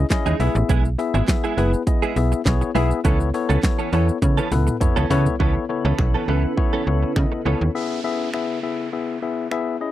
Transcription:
0.10 tine electric piano C#4 E4 G#4 D#5, muted clean electric guitar stroke, kick, snare, clap, closed hi-hat, shaker
0.26 fm bass D#2, clean electric guitar E3 G#3 D#4 G#4, shaker
0.40 fm bass B1, clean electric guitar G#3 B3 E4 G#4, tine electric piano B3 E4 G#4 E5, open hi-hat, shaker
0.55 fm bass A1, muted clean electric guitar stroke, shaker
0.69 fm bass B1, clean electric guitar G#3 B3 E4 G#4, kick, closed hi-hat, shaker
0.85 muted clean electric guitar stroke, shaker
0.98 tine electric piano B3 E4 G#4 E5, muted clean electric guitar stroke, open hi-hat, shaker
1.14 fm bass G#1, clean electric guitar G#3 B3 E4 G#4, shaker
1.28 tine electric piano B3 E4 G#4 E5, muted clean electric guitar stroke, kick, snare, clap, closed hi-hat, shaker
1.44 clean electric guitar G#3 B3 E4 G#4, shaker
1.57 fm bass F#1, clean electric guitar G#3 B3 E4 G#4, tine electric piano B3 E4 G#4 B4, open hi-hat, shaker
1.73 muted clean electric guitar stroke, shaker
1.86 tine electric piano B3 E4 G#4 D#5, muted clean electric guitar stroke, kick, closed hi-hat, shaker
2.02 clean electric guitar G#3 B3 E4 G#4, shaker
2.16 fm bass B1, tine electric piano B3 E4 G#4 E5, open hi-hat, shaker
2.32 muted clean electric guitar stroke, shaker
2.45 fm bass B1, tine electric piano B3 E4 G#4 C#5, kick, snare, clap, closed hi-hat, shaker
2.61 muted clean electric guitar stroke, shaker
2.75 fm bass B1, clean electric guitar G#3 B3 E4 G#4, tine electric piano B3 E4 G#4 E5, open hi-hat, shaker
2.91 muted clean electric guitar stroke, shaker
3.04 fm bass C#2, clean electric guitar E3 B3 C#4 A4, tine electric piano B3 E4 A4 C#5, kick, closed hi-hat, shaker
3.20 muted clean electric guitar stroke, shaker
3.34 tine electric piano B3 E4 A4 C#5, muted clean electric guitar stroke, open hi-hat, shaker
3.49 fm bass C#2, clean electric guitar E3 B3 C#4 A4, shaker
3.63 tine electric piano B3 E4 A4 C#5, muted clean electric guitar stroke, kick, snare, clap, closed hi-hat, shaker
3.79 clean electric guitar E3 B3 C#4 A4, shaker
3.92 fm bass E2, clean electric guitar E3 B3 C#4 A4, tine electric piano B3 E4 A4 C#5, open hi-hat, shaker
4.08 muted clean electric guitar stroke, shaker
4.22 fm bass C#3, tine electric piano B3 E4 A4 C#5, muted clean electric guitar stroke, kick, closed hi-hat, high tom, shaker
4.37 clean electric guitar E3 B3 C#4 A4, shaker
4.51 fm bass C#2, tine electric piano B3 E4 A4 B4, muted clean electric guitar stroke, open hi-hat, mid tom, shaker
4.67 muted clean electric guitar stroke, mid tom, shaker
4.81 fm bass C#2, tine electric piano B3 E4 A4 C#5, muted clean electric guitar stroke, kick, closed hi-hat, mid tom, shaker
4.96 fm bass C#2, clean electric guitar E3 B3 C#4 A4, shaker
5.10 fm bass C#3, clean electric guitar E3 B3 C#4 A4, tine electric piano B3 E4 A4 C#5, floor tom, open hi-hat, shaker
5.26 muted clean electric guitar stroke, floor tom, shaker
5.40 fm bass C#2, ambient pad C#3 C#4 E4 A4 B4, clean electric guitar E3 B3 C#4 A4, tine electric piano B3 E4 A4 C#5, kick
5.56 muted clean electric guitar stroke
5.69 tine electric piano B3 E4 A4 C#5, muted clean electric guitar stroke
5.85 fm bass C#2, clean electric guitar E3 B3 C#4 A4
5.98 fm bass B1, tine electric piano B3 E4 A4 C#5, finger snap, muted clean electric guitar stroke, kick
6.14 clean electric guitar E3 B3 C#4 A4
6.28 fm bass C#2, clean electric guitar E3 B3 C#4 A4, tine electric piano B3 E4 A4 B4
6.44 muted clean electric guitar stroke
6.57 tine electric piano B3 E4 A4 C#5, muted clean electric guitar stroke, kick
6.73 clean electric guitar E3 B3 C#4 A4
6.87 fm bass C#2, tine electric piano B3 E4 A4 C#5, muted clean electric guitar stroke
7.03 muted clean electric guitar stroke
7.16 fm bass C#3, tine electric piano B3 E4 A4 D#5, finger snap, kick
7.32 muted clean electric guitar stroke
7.45 fm bass C#2, clean electric guitar E3 B3 C#4 A4, tine electric piano B3 E4 A4 C#5
7.61 fm bass D#2, muted clean electric guitar stroke
7.75 tine electric piano B3 E4 G#4 E5, downlifter
8.04 tine electric piano B3 E4 G#4 E5
8.34 tine electric piano B3 E4 G#4 E5, finger snap
8.63 tine electric piano B3 E4 G#4 E5
8.93 tine electric piano B3 E4 G#4 E5
9.22 tine electric piano B3 E4 G#4 E5
9.51 tine electric piano B3 E4 G#4 E5, finger snap
9.81 tine electric piano C#4 E4 G#4 D#5

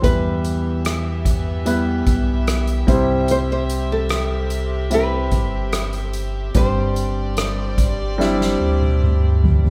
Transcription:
0.02 sub bass E2, grand piano E3 G3 B3 E4 B4, string section E3 B3 G4 E5, nylon-string guitar B4, kick, closed hi-hat
0.45 closed hi-hat
0.85 cross-stick, closed hi-hat
1.25 kick, closed hi-hat
1.66 grand piano G3 B3 E4 B4, closed hi-hat
2.06 sub bass B1, kick, closed hi-hat
2.47 cross-stick, closed hi-hat
2.67 closed hi-hat
2.87 sub bass C2, grand piano C3 G3 C4 E4 C5, string section C3 C4, kick, closed hi-hat
3.28 nylon-string guitar C5, closed hi-hat
3.52 nylon-string guitar C5
3.70 closed hi-hat
3.92 nylon-string guitar A4
4.09 cross-stick, closed hi-hat
4.50 closed hi-hat
4.91 grand piano G3 C4 E4 E5, nylon-string guitar B4, closed hi-hat
5.32 sub bass G1, kick, closed hi-hat
5.73 cross-stick, closed hi-hat
5.93 closed hi-hat
6.05 nylon-string guitar A4
6.13 closed hi-hat
6.55 sub bass G1, grand piano G2 G3 C4 D4 C5, string section G3 C5 D5, nylon-string guitar C5, kick, closed hi-hat
6.96 closed hi-hat
7.37 cross-stick, closed hi-hat
7.78 kick, closed hi-hat
8.18 grand piano G3 C4 D4 E4, snare
8.41 snare
8.61 sub bass D2
8.82 high tom
9.02 mid tom
9.44 floor tom
9.64 floor tom

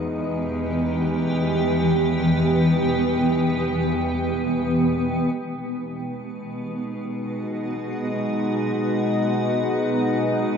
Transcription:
Already playing: cello section E2, ambient pad E3 B3 G4 B4 G5, synth drone G#3 D#4
5.34 cello section B2, synth drone G#3 D#4
6.24 ambient pad F#4
6.58 ambient pad F#5

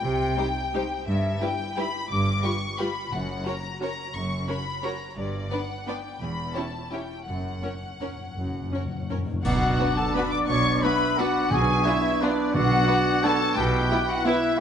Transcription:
Already playing: violin section G5
0.03 double bass section C2, cello section C3
0.38 viola section G3 D#4, violin section G4 C5
0.74 viola section G3 D#4, violin section G4 C5
1.07 double bass section G1, cello section G2, violin section E5
1.41 viola section G3 E4, violin section G4 B4 G5
1.76 viola section G3 E4, violin section G4 B4 B5
2.09 double bass section G1, cello section G2, violin section D6
2.43 viola section G3 F4, violin section G4 B4 C#6
2.78 viola section G3 F4, violin section G4 B4 B5
3.11 double bass section F#1, timpani F#2, cello section F#2, violin section F#5
3.46 viola section C#4 F#4, violin section A#4 C#5 A#5
3.80 viola section C#4 F#4, violin section A#4 C#5 A#5
4.14 double bass section F#1, cello section F#2, violin section C#6
4.48 viola section C#4 F#4, violin section A#4 C#5 B5
4.83 viola section C#4 F#4, violin section A#4 C#5 A#5
5.16 double bass section G1, cello section G2, violin section D5
5.51 viola section B3 D4, violin section B4 D5 F#5
5.86 viola section B3 D4, violin section B4 D5 G5
6.20 double bass section E1, cello section E2, violin section B5
6.54 viola section C#4 E4, violin section G4 C#5 A5
6.92 viola section C#4 E4, violin section G4 C#5 G5
7.27 double bass section F#1, timpani F#2, cello section F#2, violin section F#5
7.35 timpani F#2
7.42 timpani F#2
7.51 timpani F#2
7.59 timpani F#2
7.63 timpani F#2, viola section C#4, violin section A#4 C#5
7.75 timpani F#2
7.83 timpani F#2
7.92 timpani F#2
8.00 timpani F#2, viola section C#4, violin section A#4 C#5
8.08 timpani F#2
8.16 timpani F#2
8.23 timpani F#2
8.31 timpani F#2
8.36 double bass section F#1, cello section F#2, timpani F#2
8.45 timpani F#2
8.52 timpani F#2
8.61 timpani F#2
8.69 timpani F#2, viola section C#4
8.74 timpani F#2, violin section A#4 C#5
8.85 timpani F#2
8.94 timpani F#2
9.02 timpani F#2
9.10 timpani F#2, viola section C#4, violin section A#4 C#5
9.18 timpani F#2
9.26 timpani F#2
9.33 timpani F#2
9.44 double bass section B1, cello section B2, timpani B2, french horn section B3 D4, trumpet F#4, oboe D5, flute section F#5, violin section F#5, concert bass drum, crash
9.78 viola section B3 D4, violin section F#4 B4, oboe D5
9.97 trumpet A4, violin section A5, flute section A5
10.14 viola section B3 D4, violin section F#4 B4 B5, trumpet B4, flute section B5
10.31 trumpet D5, violin section D6, flute section D6
10.48 double bass section B1, cello section B2, trumpet C#5, violin section C#6, flute section C#6
10.83 viola section B3 D4, violin section F#4 B4 B5, trumpet B4, oboe E5, flute section B5
11.18 viola section B3 D4, trumpet F#4, violin section F#4 B4 F#5, oboe D5, flute section F#5
11.51 double bass section B1, timpani B2, cello section B2, french horn section B3 D4, trumpet G#4, oboe C#5, flute section G#5, violin section G#5
11.85 viola section B3 D4, trumpet E4, violin section F4 B4 E5, flute section E5
12.21 viola section B3 D4, trumpet D4, violin section F4 B4 D5, oboe B4, flute section D5
12.54 double bass section B1, cello section B2, timpani B2, trumpet F#4, oboe D5, flute section F#5, violin section F#5
12.88 viola section B3 D4, violin section F#4 B4, oboe D5
13.23 viola section B3 D4, violin section F#4 B4 A5, trumpet A4, oboe C#5, flute section A5
13.56 double bass section B1, cello section B2, french horn section B3 E4, trumpet G4, oboe B4, flute section G5, violin section G5
13.91 viola section B3 E4, violin section E4 B4
14.07 trumpet F#4, flute section F#5, violin section F#5
14.25 viola section B3 E4, trumpet E4, violin section E4 B4 E5, flute section E5

